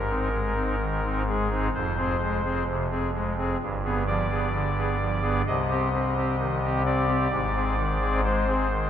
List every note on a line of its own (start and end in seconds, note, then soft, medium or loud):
0.00 1.69 G#1 medium
0.00 1.69 G#2 medium
0.00 1.22 A#4 medium
0.10 0.29 C4 soft
0.10 0.29 D#4 soft
0.32 0.53 G#3 soft
0.56 0.75 C4 soft
0.56 0.76 D#4 soft
0.80 1.00 D#3 soft
1.04 1.23 C4 soft
1.04 1.23 D#4 soft
1.28 1.48 G#3 soft
1.28 1.67 G#4 medium
1.51 1.70 C4 soft
1.51 1.70 D#4 soft
1.74 3.56 F1 medium
1.74 3.56 F2 medium
1.74 2.64 C5 medium
1.97 2.17 C4 soft
1.97 2.17 G#4 soft
2.21 2.41 G#3 soft
2.44 2.63 C4 soft
2.44 2.64 G#4 soft
2.69 2.89 C3 soft
2.91 3.10 C4 soft
2.91 3.10 G#4 soft
3.14 3.35 G#3 soft
3.38 3.57 C4 soft
3.38 3.57 G#4 soft
3.60 5.41 G1 medium
3.60 5.42 G2 medium
3.84 4.03 B3 soft
3.84 4.03 G#4 soft
4.07 4.27 F3 soft
4.07 5.41 D5 loud
4.30 4.49 B3 soft
4.30 4.49 G#4 soft
4.54 4.74 D3 medium
4.77 4.96 B3 soft
4.77 4.96 G#4 medium
5.00 5.20 F3 soft
5.22 5.42 B3 soft
5.22 5.42 G#4 medium
5.46 7.28 C2 medium
5.46 7.28 C3 medium
5.46 6.82 D#5 loud
5.70 5.90 C4 soft
5.70 5.89 G4 soft
5.93 6.13 C4 soft
6.17 6.36 C4 soft
6.17 6.36 G4 soft
6.39 6.59 D#3 soft
6.64 6.82 C4 soft
6.64 6.83 G4 soft
6.85 7.06 C4 soft
6.85 8.21 D5 loud
7.07 7.27 C4 soft
7.07 7.27 G4 medium
7.31 8.90 G#1 medium
7.31 8.90 G#2 medium
7.55 7.75 C4 soft
7.55 7.75 G#4 soft
7.77 7.98 D#3 medium
8.00 8.20 C4 soft
8.00 8.20 G#4 soft
8.24 8.45 G#3 medium
8.24 8.90 C5 loud
8.47 8.67 C4 soft
8.47 8.68 G#4 medium
8.71 8.90 D#3 soft